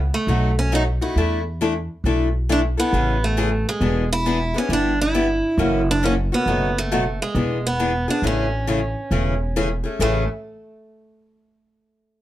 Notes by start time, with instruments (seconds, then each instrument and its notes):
0.14 steel-string acoustic guitar A3
0.27 upright bass B1, steel-string acoustic guitar B2 F#3 A3 D#4 F#4
0.59 steel-string acoustic guitar C#4
0.72 steel-string acoustic guitar B2 F#3 A3 D#4 F#4
1.01 steel-string acoustic guitar A3 D#4 E4 F#4
1.16 upright bass E2, steel-string acoustic guitar E3 A3 D4 E4 A4
1.61 steel-string acoustic guitar E3 A3 D4 E4 A4
2.04 upright bass B1, steel-string acoustic guitar E3 A3 D4 E4 A4
2.49 steel-string acoustic guitar E3 A3 D4 E4 A4
2.77 steel-string acoustic guitar B3 D4 E4 A4
2.93 upright bass A1, steel-string acoustic guitar C#3 E3 A3 C#4 G#4
3.24 steel-string acoustic guitar A3
3.37 steel-string acoustic guitar C#3 E3 A3 C#4 G#4
3.69 steel-string acoustic guitar G#3
3.81 upright bass E1, steel-string acoustic guitar E3 B3 D4 G#4
4.13 steel-string acoustic guitar E4
4.26 steel-string acoustic guitar E3 B3 D4 G#4
4.54 steel-string acoustic guitar B3 C#4 D4 G#4
4.69 upright bass G1, steel-string acoustic guitar G3 B3 E4 G4
4.73 steel-string acoustic guitar D4
5.01 steel-string acoustic guitar E4
5.14 steel-string acoustic guitar G3 B3 E4 G4
5.58 upright bass F#1, steel-string acoustic guitar C#3 E3 A#3 C#4 F#4
5.91 steel-string acoustic guitar D4
6.03 steel-string acoustic guitar C#3 E3 A#3 C#4 F#4
6.32 steel-string acoustic guitar A#3 B3 C#4 F#4
6.46 upright bass F#1, steel-string acoustic guitar B2 F#3 A3 D#4 F#4
6.78 steel-string acoustic guitar A3
6.92 steel-string acoustic guitar B2 F#3 A3 D#4 F#4
7.22 steel-string acoustic guitar G#3
7.35 upright bass E1, steel-string acoustic guitar E3 B3 D4 G#4
7.67 steel-string acoustic guitar B3
7.79 steel-string acoustic guitar E3 B3 D4 G#4
8.08 steel-string acoustic guitar B3 D4 G#4
8.22 upright bass A1, steel-string acoustic guitar C#3 E3 A3 C#4 G#4
8.27 steel-string acoustic guitar C#4
8.67 steel-string acoustic guitar C#3 E3 A3 C#4 G#4
9.11 upright bass E1, steel-string acoustic guitar C#3 E3 A3 C#4 G#4
9.56 steel-string acoustic guitar C#3 E3 A3 C#4 G#4
9.84 steel-string acoustic guitar A3 C#4 G#4
9.99 upright bass A1, steel-string acoustic guitar A2 C#3 E3 A3 C#4 G#4